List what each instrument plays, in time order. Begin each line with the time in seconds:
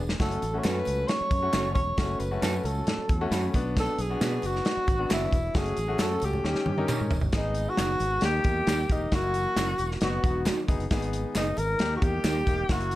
Already playing: fingered electric bass E1, tonewheel organ G#3 B3 D4
0.09 snare
0.19 fingered electric bass F#1, tonewheel organ F#3 A3 C#4, grand piano A3 C#4 F#4, tenor saxophone A4, kick, snare, closed hi-hat, tambourine, muted conga
0.31 closed hi-hat
0.42 fingered electric bass A1, closed hi-hat, tambourine
0.53 grand piano A3 C#4 F#4
0.59 tenor saxophone C#5
0.64 fingered electric bass F#2, clean electric guitar C#4 F#4 A4, tenor saxophone B4, snare, clap, closed hi-hat, tambourine, high conga
0.85 fingered electric bass C#2, closed hi-hat, tambourine, muted conga
1.08 tenor saxophone C#5, snare, closed hi-hat
1.21 muted fingered electric bass stroke
1.31 fingered electric bass F#2, kick, closed hi-hat, tambourine, muted conga, low conga
1.42 grand piano A3 C#4 F#4
1.53 fingered electric bass F#1, clean electric guitar C#4 F#4 A4, snare, clap, closed hi-hat, tambourine, high conga
1.64 high conga
1.75 fingered electric bass E1, tenor saxophone C#5, kick, closed hi-hat, tambourine, high conga
1.97 fingered electric bass F#1, grand piano A3 C#4 F#4, kick, snare, closed hi-hat, tambourine
2.19 fingered electric bass F#1, tenor saxophone B4, closed hi-hat, tambourine
2.31 grand piano A3 C#4 F#4
2.41 fingered electric bass F#2, clean electric guitar C#4 F#4 A4, snare, clap, closed hi-hat, tambourine, high conga
2.64 fingered electric bass C#2, tenor saxophone A4, closed hi-hat, tambourine, muted conga
2.87 snare, closed hi-hat, low conga
2.98 muted fingered electric bass stroke
3.09 fingered electric bass E2, kick, closed hi-hat, muted conga, low conga
3.21 grand piano A3 C#4 F#4
3.31 fingered electric bass F#2, clean electric guitar C#4 F#4 A4, grand piano B5, snare, clap, closed hi-hat, tambourine, high conga
3.43 high conga
3.54 fingered electric bass B1, tonewheel organ F#3 B3 D4, grand piano B3 D4 F#4, kick, closed hi-hat, tambourine, high conga
3.77 tenor saxophone A4, kick, snare, closed hi-hat, tambourine
3.98 fingered electric bass B1, tenor saxophone G#4, closed hi-hat, tambourine
4.10 grand piano B3 D4 F#4
4.21 fingered electric bass B2, clean electric guitar D4 F#4 B4, snare, clap, closed hi-hat, tambourine, high conga
4.42 fingered electric bass F#1, tenor saxophone F#4, closed hi-hat, tambourine, muted conga
4.56 snare
4.65 snare, closed hi-hat
4.77 muted fingered electric bass stroke
4.88 fingered electric bass G#1, kick, closed hi-hat, tambourine, muted conga, low conga
4.99 grand piano B3 D4 F#4
5.09 fingered electric bass F#1, clean electric guitar D4 F#4 B4, tenor saxophone E4, snare, clap, closed hi-hat, tambourine, high conga
5.21 high conga
5.31 fingered electric bass E1, kick, closed hi-hat, tambourine, high conga
5.54 fingered electric bass F#1, grand piano A3 C#4 F#4, tonewheel organ A3 C#4, tenor saxophone G#4, kick, snare, closed hi-hat, tambourine, muted conga
5.66 closed hi-hat
5.77 fingered electric bass A1, closed hi-hat, tambourine
5.88 grand piano A3 C#4 F#4
5.98 fingered electric bass F#2, clean electric guitar C#4 F#4 A4, tenor saxophone A4, snare, clap, closed hi-hat, tambourine, high conga
6.20 fingered electric bass C#2, closed hi-hat, tambourine, muted conga
6.25 tenor saxophone G4
6.33 low conga
6.44 fingered electric bass D#2, tonewheel organ D#3 G3, grand piano C#4 D#4 G4, snare
6.55 muted fingered electric bass stroke, snare
6.66 fingered electric bass G2, high tom, muted conga, low conga
6.78 grand piano C#4 D#4 A#4, high tom
6.88 clean electric guitar C#4 G4 A#4, clap, mid tom, tambourine, high conga
7.01 fingered electric bass G#2
7.11 fingered electric bass E1, floor tom, tambourine, high conga
7.21 fingered electric bass G1, floor tom
7.32 fingered electric bass G#1, tonewheel organ D#3 G#3 B3, grand piano B3 D#4 G#4, kick, snare, closed hi-hat, tambourine, muted conga
7.37 tenor saxophone D#4
7.55 closed hi-hat, tambourine
7.70 tenor saxophone F#4
7.77 fingered electric bass F#1, clean electric guitar D#4 G#4 B4, snare, clap, closed hi-hat, tambourine, high conga
8.00 fingered electric bass G#1, closed hi-hat, tambourine, muted conga
8.21 fingered electric bass D#2, tonewheel organ D#3 G3 A#3, grand piano A#3 D#4 G4, tenor saxophone G4, snare, closed hi-hat, tambourine
8.44 fingered electric bass E2, grand piano A#3 D#4 G4, kick, closed hi-hat, tambourine, muted conga, low conga
8.67 fingered electric bass D#2, clean electric guitar D#4 G4 A#4, snare, clap, closed hi-hat, tambourine, high conga
8.89 fingered electric bass E1, grand piano A#3 D#4 G4, tenor saxophone D#4, kick, closed hi-hat, tambourine, high conga
9.12 fingered electric bass F#1, tonewheel organ E3 F#3 A#3, grand piano A#3 E4 F#4, tenor saxophone F#4, kick, snare, closed hi-hat, tambourine
9.34 closed hi-hat, tambourine
9.57 fingered electric bass F#1, clean electric guitar C#4 E4 A#4, snare, clap, closed hi-hat, tambourine, high conga
9.78 fingered electric bass E1, closed hi-hat, tambourine, muted conga
9.91 snare
10.01 fingered electric bass F#1, tonewheel organ D#3 B3, grand piano B3 D#4 F#4, tenor saxophone F#4, snare, closed hi-hat, tambourine, low conga
10.24 fingered electric bass E1, grand piano B3 D#4 F#4, kick, closed hi-hat, tambourine, muted conga, low conga
10.46 clean electric guitar D#4 F#4 B4, snare, clap, closed hi-hat, tambourine, high conga
10.68 fingered electric bass F#1, grand piano B3 D#4 G#4, kick, closed hi-hat, tambourine, high conga
10.80 fingered electric bass F#1, closed hi-hat
10.91 fingered electric bass G#1, tonewheel organ G#3, grand piano B3 D#4 G#4, kick, snare, closed hi-hat, tambourine
11.02 closed hi-hat
11.13 closed hi-hat, tambourine
11.35 fingered electric bass F#1, clean electric guitar D#4 G#4 B4, tenor saxophone D#4, snare, clap, closed hi-hat, tambourine, high conga
11.57 fingered electric bass G#1, tenor saxophone A#4, closed hi-hat, tambourine, muted conga
11.79 fingered electric bass D#2, tonewheel organ G3 A#3, grand piano A#3 D#4 G4, snare, closed hi-hat
11.97 tenor saxophone F#4
12.02 fingered electric bass E2, grand piano A#3 D#4 G4, tenor saxophone G4, kick, closed hi-hat, tambourine, muted conga, low conga
12.24 fingered electric bass D#2, clean electric guitar D#4 G4 A#4, snare, clap, closed hi-hat, tambourine, high conga
12.47 fingered electric bass E1, grand piano A#3 D#4 G4, kick, closed hi-hat, tambourine, high conga
12.69 fingered electric bass F#1, tonewheel organ E3 F#3, grand piano A#3 E4 F#4, tenor saxophone F#4, kick, snare, closed hi-hat, tambourine
12.80 closed hi-hat
12.91 closed hi-hat, tambourine